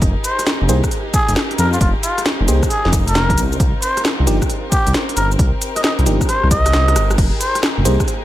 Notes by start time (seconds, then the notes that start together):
Already playing: D#4
0.02 F1 G4 G#4 A#4, kick, closed hi-hat, cabasa
0.24 C5, closed hi-hat, cabasa
0.39 cross-stick, closed hi-hat, cabasa
0.47 snare, cabasa
0.61 F1
0.69 C2 A#3 D#4 G4 G#4 C5, closed hi-hat, cabasa
0.84 kick, cross-stick, cabasa
0.91 closed hi-hat, cabasa
1.14 G#4, kick, closed hi-hat, cabasa
1.28 F1, closed hi-hat, cabasa
1.36 snare, cabasa
1.51 cross-stick, closed hi-hat
1.58 F2 A#4, closed hi-hat, cabasa
1.73 F4, cabasa
1.81 F1 F4, kick, closed hi-hat, cabasa
2.03 F4, closed hi-hat, cabasa
2.18 cross-stick, closed hi-hat, cabasa
2.26 snare, cabasa
2.40 F1
2.48 C2 A#3 D#4 G4 G#4 C5, closed hi-hat, cabasa
2.63 kick, cross-stick, cabasa
2.70 G#4, closed hi-hat, cabasa
2.85 F1, snare
2.93 kick, closed hi-hat, cabasa
3.08 A#4, closed hi-hat, cabasa
3.15 snare, cabasa
3.30 kick, cross-stick, closed hi-hat
3.38 C2 C4 F4, closed hi-hat, cabasa
3.52 cabasa
3.60 C2, kick, closed hi-hat, cabasa
3.82 C5, closed hi-hat, cabasa
3.97 cross-stick, closed hi-hat, cabasa
4.05 snare, cabasa
4.19 C2
4.27 G1 F3 A#3 D4 D#4 G4, closed hi-hat, cabasa
4.42 kick, cross-stick, cabasa
4.50 closed hi-hat, cabasa
4.72 G4, kick, closed hi-hat, cabasa
4.87 C2, closed hi-hat, cabasa
4.94 snare, cabasa
5.09 cross-stick, closed hi-hat
5.17 G1 G4 A#4, closed hi-hat, cabasa
5.31 cabasa
5.39 C2, kick, closed hi-hat, cabasa
5.62 closed hi-hat, cabasa
5.76 D#5, cross-stick, closed hi-hat, cabasa
5.84 D#5, snare, cabasa
5.99 C2, closed hi-hat
6.06 G1 F3 A#3 D4 D#4 G4, closed hi-hat, cabasa
6.21 kick, cross-stick, cabasa
6.29 C5, cross-stick, closed hi-hat, cabasa
6.43 C2, cross-stick
6.51 D#5, kick, closed hi-hat, cabasa
6.66 cross-stick, closed hi-hat, cabasa
6.73 cross-stick, snare, cabasa
6.88 cross-stick, closed hi-hat
6.96 G1, cross-stick, closed hi-hat, cabasa
7.11 cross-stick, cabasa
7.18 F1 D#4 G#4, kick, closed hi-hat, crash, cabasa
7.40 C5, closed hi-hat, cabasa
7.55 cross-stick, closed hi-hat, cabasa
7.63 snare, cabasa
7.78 F1
7.85 C2 A#3 D#4 G4 G#4 C5, closed hi-hat, cabasa
8.00 kick, cross-stick, cabasa
8.08 closed hi-hat, cabasa